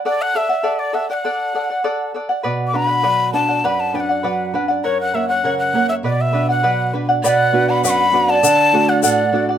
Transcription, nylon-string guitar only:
\new Staff \with { instrumentName = "Nylon-string guitar" } { \time 2/4 \key b \minor \tempo 4 = 100 r2 | r2 | b,8 d'8 fis8 d'8 | fis,8 d'8 fis8 d'8 |
fis,8 ais8 cis8 ais8 | b,8 d'8 fis8 d'8 | b,8 <b d' fis'>8 fis,8 <b d' fis'>8 | d8 <a d' fis'>8 a,8 <a d' fis'>8 | }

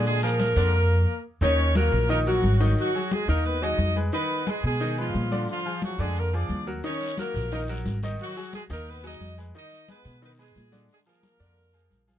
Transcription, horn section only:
\new Staff \with { instrumentName = "Horn section" } { \time 4/4 \key ees \minor \tempo 4 = 177 <aes aes'>8 <bes bes'>2. r8 | <des' des''>4 <bes bes'>4 <bes bes'>8 <ges ges'>4. | <ges ges'>4 <aes aes'>8 <bes bes'>8 <ces' ces''>8 <ees' ees''>4 r8 | <ces' ces''>4 <aes aes'>8 <aes aes'>4 <f f'>4. |
<f f'>4 <ges ges'>8 <aes aes'>8 <bes bes'>8 <d' d''>4 r8 | <des' des''>4 <bes bes'>4 <bes bes'>8 r4. | <ges ges'>4 <aes aes'>8 <bes bes'>8 <ces' ces''>8 <ees' ees''>4 r8 | <ees' ees''>4 <ces' ces''>4 <ces' ces''>8 <aes aes'>4. |
<aes aes'>8 <bes bes'>2. r8 | }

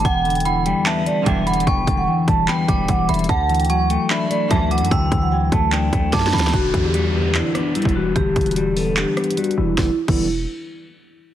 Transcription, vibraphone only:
\new Staff \with { instrumentName = "Vibraphone" } { \time 4/4 \key e \minor \tempo 4 = 148 fis''8. g''16 fis''8 g''8 e''8 d''8 r8 fis''8 | g''8. fis''16 g''8 a''8 g''4 fis''8 e''8 | fis''8. g''16 fis''8 g''8 e''8 d''8 e''8 fis''8 | r8. fis''16 g''8 a''8 g''4 a''4 |
fis'8. g'16 fis'8 g'8 e'8 d'8 e'8 fis'8 | g'8. fis'16 g'8 a'8 g'4 fis'8 e'8 | e'16 r8 e'8 r2 r8. | }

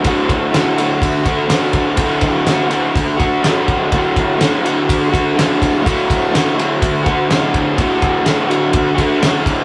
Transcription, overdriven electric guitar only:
\new Staff \with { instrumentName = "Overdriven electric guitar" } { \clef bass \time 4/4 \key d \major \tempo 4 = 124 <d, a, d a fis'>4 <a, d a fis'>8 <d a fis'>4 <d a fis'>8 <d, a, d a fis'>4 | <d, a, d a fis'>4 <a, d a fis'>8 <d a fis'>4 <d a fis'>8 <d, a, d a fis'>4 | <d, a, d a fis'>4 <a, d a fis'>8 <d a fis'>4 <d a fis'>8 <d, a, d a fis'>4 | <d, a, d a fis'>4 <a, d a fis'>8 <d a fis'>4 <d a fis'>8 <d, a, d a fis'>4 |
<d, a, d a fis'>4 <a, d a fis'>8 <d a fis'>4 <d a fis'>8 <d, a, d a fis'>4 | }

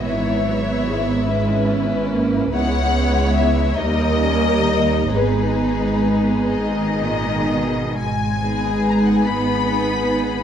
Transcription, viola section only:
\new Staff \with { instrumentName = "Viola section" } { \time 6/8 \key e \lydian \tempo 4. = 48 << { b4. cis'4. | \key gis \minor b4. ais4. | b2~ b8. r16 | r8 dis'4. dis'4 | } \\ { e8 fis8 gis8 gis8 b8 ais8 | gis4. g4. | gis2~ gis8. r16 | r8 b4. b4 | } >> }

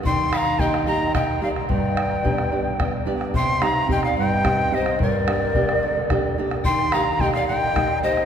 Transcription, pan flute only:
\new Staff \with { instrumentName = "Pan flute" } { \time 6/8 \key g \minor \tempo 4. = 73 g''8 f''8 ees''8 ees''8 ees''8 d''8 | d''2~ d''8 r8 | g''8 f''8 ees''16 d''16 ees''4 c''8 | bes'2~ bes'8 r8 |
g''8 f''8 ees''16 d''16 ees''4 c''8 | }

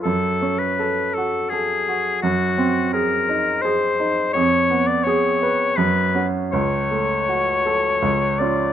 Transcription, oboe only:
\new Staff \with { instrumentName = "Oboe" } { \time 3/4 \key fis \minor \tempo 4 = 82 a'8. b'8. a'8 gis'4 | fis'4 ais'4 bis'4 | cis''8. d''16 cis''4 b'8. r16 | cis''2~ cis''8 d''8 | }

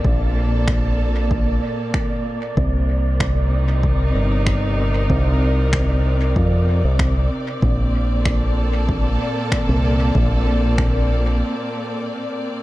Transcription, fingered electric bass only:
\new Staff \with { instrumentName = "Fingered electric bass" } { \clef bass \time 4/4 \key bes \major \tempo 4 = 95 bes,,2~ bes,,8 r4. | c,2~ c,8 g,,4. | c,2 f,8. c,8. r8 | bes,,2~ bes,,8 r8. c,8. |
bes,,2 r2 | }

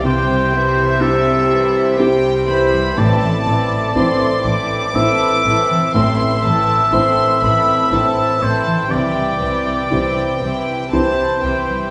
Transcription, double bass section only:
\new Staff \with { instrumentName = "Double bass section" } { \clef bass \time 3/4 \key a \minor \tempo 4 = 61 c,2. | a,,8 a,,8 a,,8 a,,8 a,,8 a,,8 | a,,8 a,,8 a,,8 a,,8 a,,8 a,,8 | c,8 c,8 c,8 c,8 c,8 c,8 | }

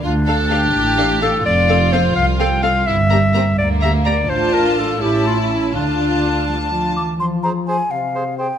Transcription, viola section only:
\new Staff \with { instrumentName = "Viola section" } { \time 6/8 \key d \minor \tempo 4. = 84 r8 <d' a'>8 <d' a'>8 r8 <d' a'>8 <d' a'>8 | r8 <c' a'>8 <c' a'>8 r8 <c' a'>8 <c' a'>8 | r8 <bes g'>8 <bes g'>8 r8 <bes g'>8 <bes g'>8 | <d' f'>4. <cis' e'>4. |
<d' f'>2~ <d' f'>8 r8 | \key f \minor r2. | }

